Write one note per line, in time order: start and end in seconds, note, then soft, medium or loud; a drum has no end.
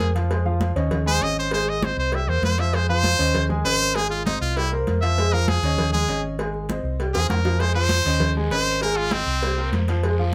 0.00 0.71 F2 medium
0.00 0.13 G#4 loud
0.00 0.10 A#4 medium
0.00 0.10 C5 medium
0.00 cowbell medium
0.00 high conga medium
0.15 0.28 F3 medium
0.15 0.28 F4 medium
0.15 0.28 F5 medium
0.15 cowbell medium
0.30 0.43 G#3 medium
0.30 0.43 G#4 medium
0.30 0.43 C5 medium
0.30 cowbell loud
0.30 high conga soft
0.45 0.71 F3 medium
0.45 0.71 F4 medium
0.45 0.71 F5 medium
0.45 high conga soft
0.61 cowbell medium
0.61 high conga loud
0.75 1.18 D#2 medium
0.75 1.01 C#4 medium
0.75 1.01 C#5 medium
0.75 1.01 D#5 medium
0.75 cowbell medium
0.75 high conga soft
0.91 cowbell loud
0.91 high conga soft
0.91 low conga medium
1.06 1.19 G#3 medium
1.06 1.19 G#4 loud
1.06 1.24 C5 loud
1.06 1.19 G#5 medium
1.06 high conga soft
1.21 1.92 G#1 medium
1.21 1.46 C#4 medium
1.21 1.47 C#5 medium
1.21 1.47 D#5 medium
1.21 1.37 D#5 loud
1.21 cowbell medium
1.21 high conga soft
1.37 1.53 C5 medium
1.37 high conga soft
1.51 1.77 G#3 medium
1.51 1.77 G#4 medium
1.51 1.71 C5 medium
1.51 1.77 G#5 medium
1.51 cowbell loud
1.51 high conga soft
1.67 1.86 D#5 medium
1.67 high conga soft
1.82 2.07 C4 medium
1.82 2.08 C5 medium
1.82 1.98 C5 medium
1.82 2.08 D#5 medium
1.82 cowbell medium
1.82 high conga loud
1.97 2.26 C2 medium
1.97 2.16 C5 medium
1.97 high conga soft
2.12 2.25 G3 medium
2.12 2.26 G4 medium
2.12 2.31 E5 medium
2.12 2.26 G5 medium
2.12 cowbell loud
2.12 high conga soft
2.27 2.41 E2 medium
2.27 2.53 A#3 medium
2.27 2.53 A#4 medium
2.27 2.53 C5 medium
2.27 2.43 C5 medium
2.27 high conga soft
2.42 3.13 F2 medium
2.42 2.61 C5 medium
2.42 cowbell medium
2.42 high conga medium
2.58 2.71 F3 medium
2.58 2.72 F4 medium
2.58 2.76 E5 medium
2.58 2.72 F5 medium
2.58 cowbell medium
2.58 high conga soft
2.73 2.86 G#3 medium
2.73 2.87 G#4 medium
2.73 2.87 C5 medium
2.73 2.89 C5 medium
2.73 cowbell loud
2.89 3.14 F3 medium
2.89 3.14 F4 medium
2.89 3.48 C5 loud
2.89 3.14 F5 medium
2.89 high conga soft
3.04 cowbell medium
3.04 high conga loud
3.19 3.62 D#2 medium
3.19 3.44 C#4 medium
3.19 3.44 C5 medium
3.19 3.45 D#5 medium
3.19 cowbell medium
3.19 high conga soft
3.34 cowbell loud
3.34 high conga soft
3.34 low conga medium
3.49 3.62 G#3 medium
3.49 3.62 G#4 medium
3.49 3.63 G#5 medium
3.49 high conga soft
3.49 low conga medium
3.65 4.35 G#1 medium
3.65 3.90 C#4 medium
3.65 3.90 A#4 medium
3.65 3.97 C5 loud
3.65 3.90 D#5 medium
3.65 cowbell medium
3.65 high conga soft
3.81 high conga soft
3.95 4.21 G#3 medium
3.95 4.10 G#4 loud
3.95 4.21 G#4 medium
3.95 4.21 G#5 medium
3.95 cowbell loud
3.95 high conga soft
4.10 4.25 F4 medium
4.10 high conga soft
4.26 4.51 C4 medium
4.26 4.41 D#4 medium
4.26 4.51 C5 medium
4.26 4.52 D#5 medium
4.26 cowbell medium
4.26 high conga loud
4.41 4.83 C2 medium
4.41 4.58 F4 medium
4.41 high conga soft
4.56 4.69 G3 medium
4.56 4.71 E4 loud
4.56 4.69 G4 medium
4.56 4.69 G5 medium
4.56 cowbell loud
4.56 high conga soft
4.72 4.97 A#3 medium
4.72 4.97 A#4 medium
4.72 4.97 C5 medium
4.72 high conga soft
4.87 5.58 F2 medium
4.87 cowbell medium
4.87 high conga medium
5.02 5.15 F3 medium
5.02 5.15 F4 medium
5.02 5.35 E5 loud
5.02 5.15 F5 medium
5.02 cowbell medium
5.18 5.30 G#3 medium
5.18 5.31 G#4 medium
5.18 5.31 C5 medium
5.18 cowbell loud
5.18 high conga soft
5.33 5.58 F3 medium
5.33 5.58 F4 medium
5.33 5.50 A#4 loud
5.33 5.58 F5 loud
5.33 high conga soft
5.48 5.92 G#4 medium
5.48 cowbell medium
5.48 high conga loud
5.62 6.05 D#2 medium
5.62 5.88 C#4 medium
5.62 5.89 C#5 medium
5.62 5.89 D#5 medium
5.62 cowbell medium
5.62 high conga soft
5.78 cowbell loud
5.78 high conga soft
5.78 low conga medium
5.93 6.06 G#3 medium
5.93 6.22 G#4 loud
5.93 6.06 G#4 medium
5.93 6.06 G#5 loud
5.93 high conga soft
5.93 low conga medium
6.08 6.79 G#1 medium
6.08 6.33 C#4 medium
6.08 6.33 C#5 medium
6.08 6.34 D#5 medium
6.08 cowbell medium
6.08 high conga soft
6.23 high conga soft
6.38 6.64 G#3 medium
6.38 6.64 G#4 medium
6.38 6.64 G#5 medium
6.38 cowbell loud
6.38 high conga soft
6.54 high conga soft
6.69 6.94 C4 medium
6.69 6.94 C5 medium
6.69 6.95 D#5 medium
6.69 cowbell medium
6.69 high conga loud
6.83 7.12 C2 medium
6.83 high conga soft
7.00 7.12 G3 medium
7.00 7.12 G4 medium
7.00 7.12 G5 medium
7.00 cowbell medium
7.00 high conga soft
7.14 7.29 E2 medium
7.14 7.40 A#3 medium
7.14 7.29 G#4 loud
7.14 7.40 A#4 medium
7.14 7.40 C5 medium
7.14 high bongo medium
7.14 high conga soft
7.30 8.00 F2 medium
7.30 7.62 A#4 medium
7.30 cowbell medium
7.30 high bongo medium
7.30 high conga medium
7.45 7.58 F3 medium
7.45 7.58 F4 medium
7.45 7.58 F5 medium
7.45 cowbell medium
7.45 low bongo medium
7.60 7.73 G#3 medium
7.60 7.73 G#4 medium
7.60 7.74 C5 medium
7.60 7.73 C5 medium
7.60 cowbell loud
7.60 high conga soft
7.60 long guiro medium
7.75 8.00 F3 medium
7.75 8.00 F4 medium
7.75 8.34 C5 loud
7.75 8.01 F5 medium
7.75 high conga soft
7.89 cowbell medium
7.89 high conga loud
7.89 short guiro medium
8.05 8.48 D#2 medium
8.05 8.31 C#4 medium
8.05 8.31 C5 medium
8.05 8.31 D#5 medium
8.05 cowbell medium
8.05 high conga soft
8.05 short guiro medium
8.20 cowbell loud
8.20 high conga soft
8.20 low conga medium
8.20 long guiro medium
8.35 8.49 G#3 medium
8.35 8.49 G#4 medium
8.35 8.49 G#5 medium
8.35 high conga soft
8.50 9.21 G#1 medium
8.50 8.77 C#4 medium
8.50 8.77 A#4 medium
8.50 8.81 C5 loud
8.50 8.77 D#5 medium
8.50 cowbell medium
8.50 high conga soft
8.50 short guiro medium
8.66 high conga soft
8.66 short guiro medium
8.81 9.07 G#3 medium
8.81 9.07 G#4 medium
8.81 8.98 A#4 medium
8.81 9.07 G#5 medium
8.81 cowbell loud
8.81 high conga soft
8.96 9.14 F4 loud
8.96 high conga soft
9.11 9.71 C4 loud
9.11 9.37 C4 medium
9.11 9.38 C5 medium
9.11 9.38 D#5 medium
9.11 cowbell medium
9.11 high conga medium
9.11 short guiro medium
9.26 9.69 C2 medium
9.26 high conga soft
9.26 short guiro medium
9.43 9.55 G3 medium
9.43 9.55 G4 medium
9.43 9.56 G5 medium
9.43 cowbell loud
9.43 high conga soft
9.43 long guiro medium
9.57 9.83 A#3 medium
9.57 9.83 A#4 medium
9.57 9.83 C5 medium
9.57 high conga soft
9.72 10.35 F2 medium
9.72 cowbell medium
9.72 high conga medium
9.72 short guiro medium
9.88 10.01 F3 medium
9.88 10.01 F4 medium
9.88 10.01 F5 medium
9.88 cowbell medium
9.88 high conga soft
9.88 short guiro medium
10.03 10.16 G#3 medium
10.03 10.16 G#4 medium
10.03 10.17 C5 medium
10.03 cowbell loud
10.03 high conga soft
10.03 long guiro medium
10.18 10.35 F3 medium
10.18 10.35 F4 medium
10.18 10.35 F5 medium
10.18 high conga soft